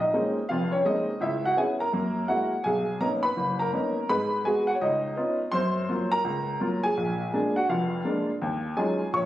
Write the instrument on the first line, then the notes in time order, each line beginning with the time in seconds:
upright piano
0.00 D#4 D#5
0.13 G#3 A#3 C4 C#4 D#4
0.49 F1 F2 F4 F5
0.72 C#4 C#5
0.85 G#3 A#3 C4 C#4 D#4 D#5
1.21 C#2 E4 E5
1.45 F#4 F#5
1.57 B3 C#4 E4 G#4 G#5
1.80 A#4 A#5
1.93 F#2 A#3
2.28 G#3 A#3 E4 F#4 F#5
2.64 B1 G#4 G#5
3.00 A#3 B3 C#4 D#4 A#4 A#5
3.23 B4 B5
3.37 F#1
3.59 A#4 A#5
3.73 A#3 B3 C#4 D#4
4.09 G#2 G#3 B4 B5
4.45 G#3 B3 F#4 G#4 G#5
4.67 F#4 F#5
4.75 C#5
4.81 C#2 D#4 D#5
5.17 B3 C#4 D#4 F4
5.52 F#2 C5 C6
5.89 F#3 A#3 F4
6.12 A#4 A#5
6.24 C#2
6.60 F#3 A#3 F4
6.83 G#4 G#5
6.97 A#1
7.33 G#3 A#3 D4
7.56 F#4 F#5
7.69 F1 F2 F4 F5
8.05 G#3 A#3 D4
8.42 D#2
8.76 F#3 G#3 C#4 D#4 F4 G#4 G#5
9.13 A#1 C#5 C#6